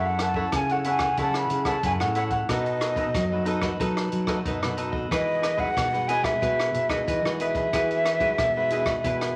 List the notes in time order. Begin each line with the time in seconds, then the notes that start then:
Already playing: F#2 F#3 C#4 E4 A4 C#5 F#5
0.06 F#5
0.19 E4 A4 C#5 F#5 A5, cross-stick, closed hi-hat
0.34 C#4 E4 A4 C#5 F#5, kick
0.52 C#3 G#5, kick, cross-stick, closed hi-hat
0.69 C#4 E4 A4 C#5 F#5, closed hi-hat
0.84 E4 A4 C#5 F#5, closed hi-hat
0.89 G#5
0.99 A4 C#5 F#5, kick, cross-stick, closed hi-hat
1.17 C#3 F#3 C#4 E4 A4 C#5 F#5, kick, closed hi-hat
1.21 A5
1.34 B5, cross-stick, closed hi-hat
1.50 C#3, closed hi-hat
1.65 C#4 E4 A4 C#5 F#5 A5, kick, cross-stick, closed hi-hat
1.83 F#2 C#3 E4 A4 C#5 F#5 G#5, kick, closed hi-hat
2.00 A2 C#4 E4 A4 C#5 F#5, cross-stick
2.15 E4 A4 C#5 F#5, closed hi-hat
2.31 A4 C#5 F#5, kick, closed hi-hat
2.48 B2 A3 D#4 F#4 A4 B4 D#5, kick, cross-stick, closed hi-hat
2.66 closed hi-hat
2.81 D#4 A4 B4 D#5, cross-stick, closed hi-hat
2.96 A3 D#4 F#4 A4 B4 D#5, kick, closed hi-hat
3.14 F#2 F#3, kick, cross-stick, closed hi-hat
3.32 A3 D#4 F#4 A4 B4 D#5
3.45 D#4 A4 B4 D#5, closed hi-hat
3.62 A3 D#4 F#4 A4 B4 D#5, kick, cross-stick
3.80 B2 F#3 A3 D#4 F#4 A4 B4 D#5, kick, closed hi-hat
3.97 cross-stick, closed hi-hat
4.12 F#3, closed hi-hat
4.27 A3 D#4 F#4 A4 B4 D#5, kick, cross-stick
4.45 F#2 B2 D#4 A4 B4 D#5, kick, closed hi-hat
4.62 B2 A3 D#4 F#4 A4 B4 D#5, cross-stick
4.77 D#4 A4 B4 D#5, closed hi-hat
4.92 A4 B4 D#5, kick
5.11 E3 G#3 D#4 E4 F#4 G#4 B4 D#5, kick, cross-stick, closed hi-hat
5.42 E4 G#4 B4 D#5, cross-stick, closed hi-hat
5.57 G#3 D#4 E4 F#4 G#4 B4 D#5 F#5, kick
5.77 B2, kick, cross-stick, closed hi-hat
5.93 G#3 D#4 F#4 G#4 B4 D#5, closed hi-hat
6.08 E4 G#4 B4 D#5 G#5, closed hi-hat
6.23 G#3 D#4 F#4 G#4 B4 D#5 E5, kick, cross-stick, closed hi-hat
6.41 B2 E3 G#3 E4 F#4 G#4 B4, kick, closed hi-hat
6.60 cross-stick, closed hi-hat
6.74 B2, closed hi-hat
6.89 G#3 D#4 E4 F#4 G#4 B4 D#5, kick, cross-stick, closed hi-hat
7.07 B2 E3 E4 G#4 B4 D#5, kick, closed hi-hat
7.25 E3 G#3 D#4 F#4 G#4 B4 D#5, cross-stick
7.40 E4 G#4 B4 D#5 E5, closed hi-hat
7.55 G#4 B4 D#5, kick, closed hi-hat
7.73 E3 G#3 E4 F#4 G#4 B4, kick, cross-stick, closed hi-hat
7.91 closed hi-hat
8.04 E4 G#4 B4 D#5, cross-stick, closed hi-hat
8.20 G#3 D#4 E4 F#4 G#4 B4 D#5, kick, closed hi-hat
8.38 B2, kick, cross-stick, closed hi-hat
8.56 G#3 D#4 F#4 G#4 B4 D#5
8.70 E4 G#4 B4 D#5, closed hi-hat
8.86 G#3 D#4 F#4 G#4 B4 D#5, kick, cross-stick
9.04 B2 E3 G#3 E4 F#4 G#4 B4, kick, closed hi-hat
9.21 cross-stick, closed hi-hat